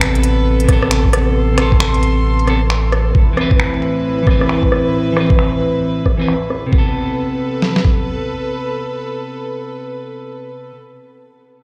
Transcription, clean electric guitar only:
0, 0, Header, 1, 2, 480
1, 0, Start_track
1, 0, Key_signature, 0, "minor"
1, 0, Tempo, 447761
1, 1454, Time_signature, 4, 2, 24, 8
1, 12468, End_track
2, 0, Start_track
2, 0, Title_t, "Clean electric guitar"
2, 0, Program_c, 0, 27
2, 0, Note_on_c, 0, 48, 95
2, 0, Note_on_c, 0, 59, 84
2, 0, Note_on_c, 0, 69, 101
2, 676, Note_off_c, 0, 48, 0
2, 688, Note_on_c, 0, 48, 91
2, 708, Note_off_c, 0, 59, 0
2, 730, Note_off_c, 0, 69, 0
2, 735, Note_on_c, 0, 59, 84
2, 776, Note_on_c, 0, 69, 99
2, 1635, Note_off_c, 0, 48, 0
2, 1648, Note_on_c, 0, 48, 75
2, 1673, Note_off_c, 0, 59, 0
2, 1688, Note_on_c, 0, 59, 68
2, 1693, Note_off_c, 0, 69, 0
2, 1733, Note_on_c, 0, 69, 83
2, 2609, Note_off_c, 0, 48, 0
2, 2629, Note_off_c, 0, 59, 0
2, 2631, Note_on_c, 0, 48, 71
2, 2652, Note_off_c, 0, 69, 0
2, 2653, Note_on_c, 0, 59, 65
2, 2676, Note_on_c, 0, 69, 81
2, 2773, Note_off_c, 0, 48, 0
2, 2784, Note_off_c, 0, 59, 0
2, 2796, Note_off_c, 0, 69, 0
2, 3571, Note_on_c, 0, 52, 90
2, 3611, Note_on_c, 0, 60, 82
2, 3657, Note_on_c, 0, 71, 96
2, 4517, Note_off_c, 0, 52, 0
2, 4530, Note_on_c, 0, 52, 87
2, 4551, Note_off_c, 0, 60, 0
2, 4574, Note_off_c, 0, 71, 0
2, 4574, Note_on_c, 0, 60, 82
2, 4617, Note_on_c, 0, 71, 94
2, 5479, Note_off_c, 0, 52, 0
2, 5492, Note_on_c, 0, 52, 73
2, 5513, Note_off_c, 0, 60, 0
2, 5534, Note_off_c, 0, 71, 0
2, 5535, Note_on_c, 0, 60, 65
2, 5578, Note_on_c, 0, 71, 78
2, 6451, Note_off_c, 0, 52, 0
2, 6473, Note_off_c, 0, 60, 0
2, 6494, Note_off_c, 0, 71, 0
2, 6619, Note_on_c, 0, 52, 83
2, 6640, Note_on_c, 0, 60, 72
2, 6661, Note_on_c, 0, 71, 92
2, 6780, Note_off_c, 0, 52, 0
2, 6791, Note_off_c, 0, 60, 0
2, 6802, Note_off_c, 0, 71, 0
2, 7144, Note_on_c, 0, 48, 75
2, 7208, Note_on_c, 0, 59, 69
2, 7273, Note_on_c, 0, 69, 82
2, 11484, Note_off_c, 0, 48, 0
2, 11548, Note_off_c, 0, 59, 0
2, 11612, Note_off_c, 0, 69, 0
2, 12468, End_track
0, 0, End_of_file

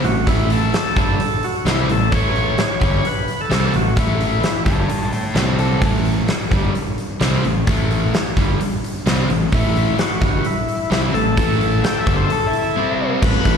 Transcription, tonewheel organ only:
0, 0, Header, 1, 2, 480
1, 0, Start_track
1, 0, Tempo, 462606
1, 284, Time_signature, 4, 2, 24, 8
1, 14083, End_track
2, 0, Start_track
2, 0, Title_t, "Tonewheel organ"
2, 0, Program_c, 0, 16
2, 48, Note_on_c, 0, 66, 76
2, 293, Note_off_c, 0, 66, 0
2, 294, Note_on_c, 0, 64, 83
2, 536, Note_off_c, 0, 64, 0
2, 541, Note_on_c, 0, 69, 95
2, 1497, Note_on_c, 0, 66, 80
2, 1520, Note_off_c, 0, 69, 0
2, 1736, Note_on_c, 0, 64, 85
2, 1737, Note_off_c, 0, 66, 0
2, 1953, Note_off_c, 0, 64, 0
2, 1983, Note_on_c, 0, 69, 89
2, 2219, Note_off_c, 0, 69, 0
2, 2226, Note_on_c, 0, 73, 96
2, 3185, Note_on_c, 0, 71, 85
2, 3202, Note_off_c, 0, 73, 0
2, 3537, Note_on_c, 0, 69, 81
2, 3543, Note_off_c, 0, 71, 0
2, 3898, Note_on_c, 0, 66, 77
2, 3900, Note_off_c, 0, 69, 0
2, 4136, Note_off_c, 0, 66, 0
2, 4144, Note_on_c, 0, 64, 74
2, 4811, Note_off_c, 0, 64, 0
2, 9905, Note_on_c, 0, 64, 82
2, 10341, Note_off_c, 0, 64, 0
2, 10372, Note_on_c, 0, 66, 80
2, 10855, Note_on_c, 0, 64, 78
2, 10861, Note_off_c, 0, 66, 0
2, 11310, Note_off_c, 0, 64, 0
2, 11323, Note_on_c, 0, 64, 84
2, 11431, Note_off_c, 0, 64, 0
2, 11559, Note_on_c, 0, 69, 96
2, 13438, Note_off_c, 0, 69, 0
2, 13738, Note_on_c, 0, 71, 102
2, 14083, Note_off_c, 0, 71, 0
2, 14083, End_track
0, 0, End_of_file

